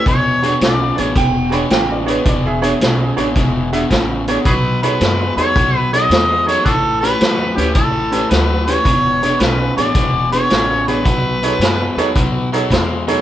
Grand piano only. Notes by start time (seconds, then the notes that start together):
0.42 D4 F#4 G#4 C#5
0.95 D4 F#4 G#4 C#5
1.50 D4 F#4 G#4 C#5
2.06 D4 F#4 G#4 C#5
2.62 D4 F#4 G#4 C#5
3.16 D4 F#4 G#4 C#5
3.73 D4 F#4 G#4 E5
4.28 D4 F#4 G#4 C#5
4.83 D#4 G#4 A4 C#5
5.37 D#4 G#4 A4 C#5
5.93 D#4 G#4 A4 C#5
6.46 D#4 G#4 A4 C#5
7.02 C#4 F#4 G4 B4
7.56 C#4 F#4 G4 B4
8.11 C#4 F#4 G4 B4
8.67 C#4 F#4 G4 B4
9.22 D4 F#4 G#4 C#5
9.76 D4 F#4 G#4 C#5
10.32 D4 F#4 G#4 B4
10.87 D4 F#4 G#4 C#5
11.43 D#4 G#4 A4 C#5
11.98 D#4 G#4 A4 C#5
12.53 D#4 G#4 A4 C#5
12.72 B5
13.07 D#4 G#4 A4 C#5